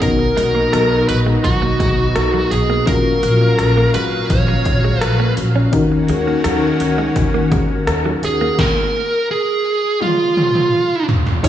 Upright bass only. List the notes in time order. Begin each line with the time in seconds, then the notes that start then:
0.02 B1
0.38 B1
0.74 B1
1.09 A#1
1.45 B1
1.80 B1
2.16 B1
2.52 B1
2.87 A#1
3.23 A#1
3.58 A#1
3.94 G#1
4.30 A#1
4.66 A#1
5.02 A#1
5.37 A#1
5.73 D#2
6.09 D#2
6.45 D#2
6.80 C#2
7.16 D#2
7.52 D#2
7.87 D#2
8.23 D#2
11.44 F#1